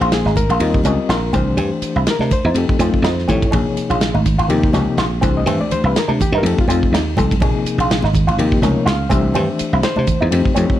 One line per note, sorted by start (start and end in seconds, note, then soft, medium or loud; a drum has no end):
0.00 0.23 A#1 medium
0.00 0.23 F3 medium
0.00 0.23 A#3 medium
0.00 0.24 D#4 medium
0.00 0.19 F4 medium
0.00 0.13 G#4 medium
0.00 0.24 C5 medium
0.00 ride medium
0.12 0.36 G#4 medium
0.12 snare loud
0.12 ride medium
0.25 0.47 G#1 medium
0.25 0.44 D#4 medium
0.25 snare soft
0.25 high conga medium
0.36 0.60 A#4 medium
0.36 kick medium
0.36 hi-hat pedal medium
0.36 ride medium
0.36 low conga medium
0.49 0.59 A#1 medium
0.49 0.69 F4 medium
0.49 ride medium
0.60 0.82 D#2 medium
0.60 0.80 G3 medium
0.60 0.80 C4 medium
0.60 0.81 F4 medium
0.60 1.07 G4 medium
0.60 0.81 A#4 medium
0.60 0.81 D#5 medium
0.60 ride medium
0.74 kick medium
0.84 0.97 C#2 medium
0.84 1.15 G3 medium
0.84 1.15 C4 medium
0.84 1.03 C#4 medium
0.84 1.15 F4 medium
0.84 1.11 A#4 medium
0.84 1.16 D#5 medium
0.84 hi-hat pedal medium
0.84 ride medium
0.84 high conga medium
1.09 1.31 A#1 medium
1.09 1.28 F4 medium
1.09 1.34 A#4 medium
1.09 snare loud
1.09 ride medium
1.33 1.56 C2 medium
1.33 2.12 E3 medium
1.33 2.12 A3 medium
1.33 1.52 C4 medium
1.33 2.12 D4 medium
1.33 2.12 G4 medium
1.33 2.03 C5 medium
1.33 kick medium
1.33 hi-hat pedal medium
1.33 ride medium
1.33 high conga medium
1.33 low conga medium
1.57 1.70 G2 loud
1.57 1.76 C4 medium
1.57 ride medium
1.57 low conga medium
1.82 muted slap bass stroke soft
1.82 hi-hat pedal medium
1.82 ride medium
1.96 2.06 C2 medium
1.96 2.14 E4 medium
2.07 2.32 A#4 medium
2.07 snare loud
2.07 ride medium
2.19 2.30 C3 medium
2.19 2.39 D4 medium
2.19 snare soft
2.19 high conga medium
2.31 2.55 C5 medium
2.31 kick medium
2.31 hi-hat pedal medium
2.31 ride medium
2.31 low conga medium
2.44 2.54 E2 medium
2.44 2.63 D#4 medium
2.54 2.67 F2 medium
2.54 2.75 F3 medium
2.54 2.76 A3 medium
2.54 2.76 C4 medium
2.54 2.76 D#4 medium
2.54 2.76 G4 medium
2.54 3.02 A4 medium
2.54 ride medium
2.69 kick medium
2.79 2.92 F2 medium
2.79 3.10 F3 medium
2.79 3.10 A3 medium
2.79 2.98 C4 medium
2.79 3.10 C4 medium
2.79 3.10 D#4 medium
2.79 3.11 F4 medium
2.79 snare soft
2.79 hi-hat pedal medium
2.79 ride medium
2.79 high conga medium
2.94 muted slap bass stroke soft
2.94 kick medium
3.02 3.25 F2 medium
3.02 3.22 D#4 medium
3.02 3.28 C5 medium
3.02 snare loud
3.02 ride medium
3.19 snare soft
3.28 3.55 A2 medium
3.28 3.44 F3 medium
3.28 3.44 A3 medium
3.28 3.46 C4 medium
3.28 3.45 C4 medium
3.28 3.45 D#4 medium
3.28 3.45 G4 medium
3.28 3.98 C#5 medium
3.28 kick medium
3.28 hi-hat pedal medium
3.28 ride medium
3.28 high conga medium
3.28 low conga medium
3.42 kick medium
3.42 ride medium
3.51 3.65 A#1 loud
3.51 4.12 C3 medium
3.51 4.12 F3 medium
3.51 4.12 A#3 medium
3.51 3.70 C#4 medium
3.51 4.13 D#4 medium
3.51 4.13 G#4 medium
3.51 kick loud
3.51 ride medium
3.51 low conga medium
3.77 muted slap bass stroke soft
3.77 hi-hat pedal medium
3.77 ride medium
3.90 4.12 A#1 medium
3.90 4.08 F4 medium
3.90 ride medium
4.01 snare loud
4.01 ride medium
4.14 4.37 G#1 medium
4.14 4.33 D#4 medium
4.14 high conga medium
4.26 kick medium
4.26 hi-hat pedal medium
4.26 ride medium
4.26 low conga medium
4.38 4.49 G#1 medium
4.38 4.57 F4 medium
4.38 ride medium
4.48 4.72 D#2 loud
4.48 4.69 C3 medium
4.48 4.69 F3 medium
4.48 4.69 A#3 medium
4.48 4.70 D#4 medium
4.48 4.70 G4 medium
4.48 ride medium
4.63 kick medium
4.73 4.86 C#2 medium
4.73 5.03 C3 medium
4.73 5.04 F3 medium
4.73 5.04 A#3 medium
4.73 4.92 C#4 medium
4.73 5.04 D#4 medium
4.73 5.04 G4 medium
4.73 snare soft
4.73 hi-hat pedal medium
4.73 ride medium
4.73 high conga medium
4.97 5.20 A#1 medium
4.97 5.17 F4 medium
4.97 snare loud
4.97 ride medium
5.21 5.45 C2 medium
5.21 6.00 E3 medium
5.21 6.00 A3 medium
5.21 5.40 C4 medium
5.21 6.01 D4 medium
5.21 6.01 G4 medium
5.21 5.71 C5 medium
5.21 kick loud
5.21 hi-hat pedal medium
5.21 ride medium
5.21 high conga medium
5.21 low conga medium
5.37 5.47 D#5 medium
5.46 5.59 G2 medium
5.46 5.65 C4 medium
5.46 5.60 E5 medium
5.46 ride medium
5.46 low conga medium
5.61 5.71 D5 medium
5.61 high conga medium
5.70 5.85 C5 medium
5.70 muted slap bass stroke soft
5.70 hi-hat pedal medium
5.70 ride medium
5.70 low conga medium
5.84 5.94 C2 medium
5.84 6.03 E4 medium
5.84 5.96 B4 medium
5.96 6.10 A#4 medium
5.96 snare loud
5.96 ride medium
6.08 6.18 C3 medium
6.08 6.27 D4 medium
6.08 6.21 D4 medium
6.08 high conga medium
6.20 6.34 G4 medium
6.20 kick medium
6.20 hi-hat pedal medium
6.20 ride medium
6.20 low conga medium
6.32 6.43 G2 medium
6.32 6.52 D#4 medium
6.38 6.46 A#4 medium
6.43 6.56 F2 loud
6.43 6.64 F3 medium
6.43 6.64 A3 medium
6.43 6.64 C4 medium
6.43 6.65 D#4 medium
6.43 6.65 G4 medium
6.43 6.59 A4 medium
6.43 ride medium
6.43 high conga medium
6.58 6.66 F4 medium
6.58 muted slap bass stroke soft
6.58 kick medium
6.68 6.90 F2 medium
6.68 6.98 F3 medium
6.68 6.99 A3 medium
6.68 6.87 C4 medium
6.68 6.99 C4 medium
6.68 6.99 D#4 medium
6.68 6.99 F4 medium
6.68 hi-hat pedal medium
6.68 ride medium
6.68 high conga medium
6.83 kick medium
6.92 7.14 D#2 medium
6.92 7.12 D#4 medium
6.92 snare loud
6.92 ride medium
7.17 7.42 C2 medium
7.17 7.33 F3 medium
7.17 7.33 A3 medium
7.17 7.35 C4 medium
7.17 7.33 C4 medium
7.17 7.33 D#4 medium
7.17 7.33 A4 medium
7.17 kick medium
7.17 hi-hat pedal medium
7.17 ride medium
7.17 high conga medium
7.17 low conga medium
7.31 kick medium
7.31 ride medium
7.40 7.54 A#1 medium
7.40 8.01 C3 medium
7.40 8.01 F3 medium
7.40 8.02 A#3 medium
7.40 7.60 C#4 medium
7.40 8.02 D#4 medium
7.40 8.02 G#4 medium
7.40 kick loud
7.40 ride medium
7.40 low conga medium
7.65 muted slap bass stroke soft
7.65 hi-hat pedal medium
7.65 ride medium
7.78 8.00 A#1 medium
7.78 7.98 F4 medium
7.78 ride medium
7.91 snare loud
7.91 ride medium
8.02 8.25 G#1 medium
8.02 8.22 D#4 medium
8.02 snare soft
8.02 high conga medium
8.14 kick medium
8.14 hi-hat pedal medium
8.14 ride medium
8.14 low conga medium
8.27 8.37 G#1 medium
8.27 8.46 F4 medium
8.27 ride medium
8.38 8.60 D#2 loud
8.38 8.58 C3 medium
8.38 8.58 F3 medium
8.38 8.59 A#3 medium
8.38 8.59 D#4 medium
8.38 8.59 G4 medium
8.38 ride medium
8.52 kick medium
8.61 8.74 C#2 medium
8.61 8.92 C3 medium
8.61 8.92 F3 medium
8.61 8.92 A#3 medium
8.61 8.81 C#4 medium
8.61 8.92 D#4 medium
8.61 8.93 A#4 medium
8.61 8.86 C#5 medium
8.61 snare soft
8.61 hi-hat pedal medium
8.61 ride medium
8.61 high conga medium
8.86 9.08 C#2 medium
8.86 9.04 F4 medium
8.86 9.11 F5 medium
8.86 snare loud
8.86 ride medium
9.09 9.33 C2 medium
9.09 9.89 E3 medium
9.09 9.89 A3 medium
9.09 9.28 C4 medium
9.09 9.89 D4 medium
9.09 9.89 G4 medium
9.09 9.83 C5 medium
9.09 9.80 E5 medium
9.09 kick medium
9.09 hi-hat pedal medium
9.09 ride medium
9.09 high conga medium
9.09 low conga medium
9.34 9.48 G2 loud
9.34 9.53 C4 medium
9.34 ride medium
9.34 low conga medium
9.59 muted slap bass stroke soft
9.59 hi-hat pedal medium
9.59 ride medium
9.73 9.83 C2 medium
9.73 9.91 E4 medium
9.83 10.53 C5 medium
9.83 snare loud
9.83 ride medium
9.96 10.07 C3 medium
9.96 10.15 D4 medium
9.96 high conga medium
10.07 kick medium
10.07 hi-hat pedal medium
10.07 ride medium
10.07 low conga medium
10.21 10.31 E2 medium
10.21 10.39 D#4 medium
10.30 10.45 F2 loud
10.30 10.51 F3 medium
10.30 10.51 A3 medium
10.30 10.52 C4 medium
10.30 10.52 D#4 medium
10.30 10.52 G4 medium
10.30 ride medium
10.45 kick medium
10.54 10.69 F2 medium
10.54 10.79 F3 medium
10.54 10.79 A3 medium
10.54 10.73 C4 medium
10.54 10.79 C4 medium
10.54 10.79 D#4 medium
10.54 10.79 G4 medium
10.54 10.79 C#5 medium
10.54 hi-hat pedal medium
10.54 ride medium
10.54 high conga medium
10.70 muted slap bass stroke soft
10.70 kick medium